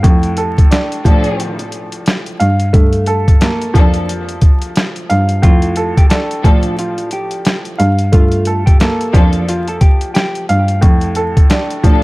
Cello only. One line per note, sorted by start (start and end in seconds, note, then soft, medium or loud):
0.04 0.61 F2 loud
1.05 1.89 A2 medium
2.41 2.57 G2 loud
2.74 3.31 G2 loud
3.75 4.58 F2 medium
5.10 5.27 G2 medium
5.44 6.00 F2 loud
6.45 7.28 A2 medium
7.80 7.96 G2 loud
8.13 8.70 G2 loud
9.14 9.98 F2 medium
10.50 10.66 G2 medium
10.83 11.40 F2 loud
11.84 12.03 A2 medium